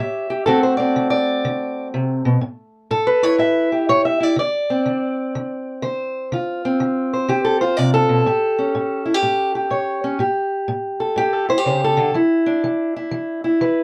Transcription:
steel-string acoustic guitar
Already playing: G4 C#5
0.00 A2 E5
0.30 G4
0.46 D3 A3 C4 F#4 A4
0.63 C5
0.77 C4 D5
0.96 D3
1.10 D5
1.45 D3
1.94 C3
2.25 B2
2.41 A2
2.91 A2 A4
3.07 B4
3.23 E4 C#5
3.38 A2 E5
3.72 G4
3.89 A2 C#5
4.05 E5
4.20 E4 D5
4.36 D3 D5
4.70 C4
4.86 D3
5.35 D3
5.82 D3 C5
6.32 D3 F4
6.65 C4
6.80 D3
7.13 C5
7.28 D3 G4
7.45 A4
7.61 F4 C5
7.77 C3 D5
7.94 A4
8.09 B2
8.26 A2 G4
8.59 C#4
8.75 A2
9.06 E4
9.14 G4
9.23 A2
9.55 G4
9.70 A2 C#5
10.04 C#4
10.19 A2 G4
10.68 A2
11.00 A4
11.16 A2 G4
11.33 A4
11.49 E4 C5
11.58 G4
11.66 C#3 C5
11.84 A4
11.97 D3
12.14 E3 E4
12.46 D4
12.64 E3
12.96 E4
13.11 E3
13.44 E4
13.61 E3 B4

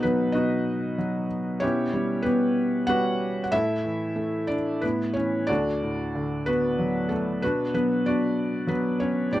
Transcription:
felt piano
Already playing: B2 B3 D#4 F#4 B4
0.03 F#3 B3 B4
0.32 B2 D#4 F#4 D#5
0.98 F#3
1.60 B2 C#4 E4 G4 C#5
1.94 G3
2.22 B2 B3 G4 B4
2.87 G3 F#4 B4 F#5
3.44 F#5
3.51 A2 E4 A4 E5
3.84 E3
4.16 A3
4.47 D4 D5
4.81 A2 B3 E4 B4
5.14 E3 C#4 C#5
5.47 D2 D4 F#4 A4 D5
5.83 A2
6.15 D3
6.46 B3 F#4 B4
6.79 F#3
7.09 A3 A4
7.42 B2 B3 D4 F#4 B4
7.74 F#3 B3 B4
8.05 B2 D4 F#4 D5
8.67 F#3 B3 B4
9.00 C#4 C#5
9.32 A2 D4 G4 D5

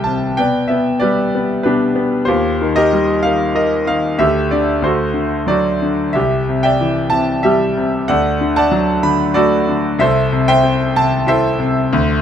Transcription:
grand piano
Already playing: C2 C3 E3 G3 G4 E5 G5 A5
0.04 C3 A5
0.37 B2 B4 D5 G5
0.68 B3 E5
1.00 G3 G4 B4 D5
1.35 B3
1.63 B2 D4 G4 B4
1.96 B3
2.25 D#2 F4 G4 C5
2.62 D#3
2.76 G4 A#4 D#5
2.93 G3
3.23 D#3 F5
3.55 A#3 D#5
3.87 D#3 F5
4.18 D2 G4 A4 E5
4.51 D3 D5
4.82 D2 F#4 A4 C5
5.14 D3
5.47 F#3 F#4 A4 D5
5.82 D3
6.13 C2 G4 E5
6.49 C3
6.63 D5 E5 G5
6.81 E3
7.10 C3 A5
7.43 G3 G4 E5
7.77 C3
8.08 D2 A4 D5 F#5
8.41 D3
8.56 D5 F#5 A5
8.71 F#3
9.03 D3 B5
9.34 A3 F#4 A4 D5
9.68 D3
9.99 C2 A4 C5 E5
10.32 C3
10.48 C5 E5 G5
10.63 C4
10.96 C3 A5
11.27 E4 A4 C5 E5
11.59 C3
11.93 D2

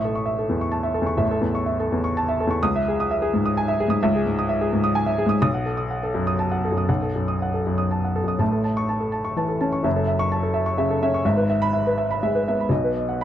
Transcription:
grand piano
Already playing: A1 E5 C#6
0.05 A4
0.15 C#6
0.26 E5
0.39 A4
0.49 E2
0.61 C#6
0.72 A5
0.83 E5
0.94 A4
1.02 E2
1.06 C#6
1.18 A1 E5
1.31 A4
1.41 E2
1.55 C#6
1.66 E5
1.80 A4
1.92 E2
2.04 C#6
2.17 A5
2.29 E5
2.40 A4
2.47 E2 C#6
2.63 C#2 D#6
2.76 E5
2.88 G#4
3.00 D#6
3.11 E5
3.22 G#4
3.33 G#2
3.46 D#6
3.57 G#5
3.68 E5
3.80 G#4
3.88 G#2 D#6
4.03 C#2 E5
4.16 G#4
4.26 G#2
4.39 D#6
4.49 E5
4.61 G#4
4.73 G#2
4.84 D#6
4.95 G#5
5.06 E5
5.18 G#4
5.26 G#2 D#6
5.42 B1 D#6
5.54 F#5
5.66 A4
5.77 D#6
5.91 F#5
6.03 A4
6.15 F#2
6.27 D#6
6.39 A5
6.52 F#5
6.65 A4
6.72 F#2
6.78 D#6
6.89 B1 F#5
7.02 A4
7.15 F#2
7.28 D#6
7.42 F#5
7.54 A4
7.67 F#2
7.78 D#6
7.91 A5
8.04 F#5
8.16 A4
8.24 F#2
8.28 D#6
8.39 A1 A2 A5
8.52 A4
8.64 A5
8.77 C#6
8.89 A5
9.01 A4
9.12 A5
9.25 C#6
9.36 E3 A5
9.49 A4
9.61 C#4 A5
9.73 C#6
9.83 F#1 F#2 E5
9.96 A4
10.07 E5
10.19 C#6
10.32 A5
10.43 A4
10.54 E5
10.66 C#6
10.78 C#3 E5
10.91 A4
11.03 C#4 E5
11.14 C#6
11.25 G#1 G#2 E5
11.37 B4
11.49 E5
11.62 B5
11.73 E5
11.87 B4
11.98 E5
12.11 B5
12.23 G#3 E5
12.35 B4
12.48 B3 E5
12.60 B5
12.69 B1 B2 D#5
12.84 B4
12.97 D#5
13.09 F#5

